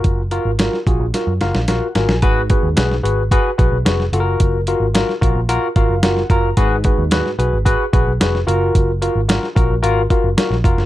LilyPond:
<<
  \new Staff \with { instrumentName = "Tine electric piano" } { \time 4/4 \key fis \major \tempo 4 = 110 <eis' fis' ais'>8 <eis' fis' ais'>8 <eis' fis' ais'>8 <eis' fis' gis'>8 <eis' fis' ais'>8 <eis' fis' ais' eis''>8 <eis' fis' ais' fis''>8 <eis' fis' ais' gis''>8 | <fis' gis' b'>8 <fis' gis' b'>8 <fis' gis' b'>8 <fis' gis' b'>8 <fis' gis' b'>8 <fis' gis' b'>8 <fis' gis' b'>8 <eis' fis' a' ais'>8~ | <eis' fis' a' ais'>8 <eis' fis' ais'>8 <eis' fis' ais'>8 <eis' fis' ais'>8 <eis' fis' ais'>8 <eis' fis' ais' eis''>8 <eis' fis' ais' fis''>8 <eis' fis' ais' ais''>8 | <fis' gis' b'>8 <fis' gis' b'>8 <fis' gis' b'>8 <fis' gis' b'>8 <fis' gis' b'>8 <fis' gis' b'>8 <fis' gis' b'>8 <eis' fis' ais'>8~ |
<eis' fis' ais'>8 <eis' fis' ais'>8 <eis' fis' ais'>8 <eis' fis' ais'>8 <eis' fis' ais'>8 <eis' fis' ais'>8 <eis' fis' ais'>8 <eis' fis' ais'>8 | }
  \new Staff \with { instrumentName = "Tine electric piano" } { \clef bass \time 4/4 \key fis \major r1 | gis,4. r2 r8 | r1 | gis,4. r2 r8 |
r1 | }
  \new Staff \with { instrumentName = "Picked electric bass" } { \clef bass \time 4/4 \key fis \major fis,,8. gis,,8 r16 ais,,16 ais,,16 r16 fis,16 fis,,16 ais,,16 ais,,16 r16 gis,,16 ais,,16 | gis,,8. dis,16 b,,8 gis,,8. r16 ais,,16 b,,16 eis,,8 fis,,8 | fis,,8. gis,,8 r16 ais,,16 ais,,8 r16 gis,,16 fis,,8. fis,,8 | gis,,8. dis,8 r16 b,,16 gis,,8 r16 ais,,16 b,,16 eis,,8 fis,,8 |
fis,,8. gis,,8 r16 ais,,16 ais,,16 gis,,8 r16 fis,,16 r16 ais,,16 eis,,16 fis,,16 | }
  \new DrumStaff \with { instrumentName = "Drums" } \drummode { \time 4/4 <hh bd>8 hh8 <hh sn>16 sn16 <hh bd>8 <hh sn>8 <hh sn>16 sn16 <hh sn>8 <hh sn>16 sn16 | <hh bd>8 <hh bd>8 <hh sn>16 sn16 hh8 <hh bd>8 <hh bd>8 <hh sn>16 sn16 hh8 | <hh bd>8 hh8 <hh sn>16 sn16 <hh bd>8 hh8 <hh bd>8 <hh sn>16 sn16 <hh bd>8 | <hh bd>8 <hh bd>8 <hh sn>16 sn16 hh8 <hh bd>8 <hh bd>8 <hh sn>16 sn16 hh8 |
<hh bd>8 hh8 <hh sn>16 sn16 <hh bd>8 hh8 <hh bd>8 <hh sn>16 sn16 <hh bd>16 sn16 | }
>>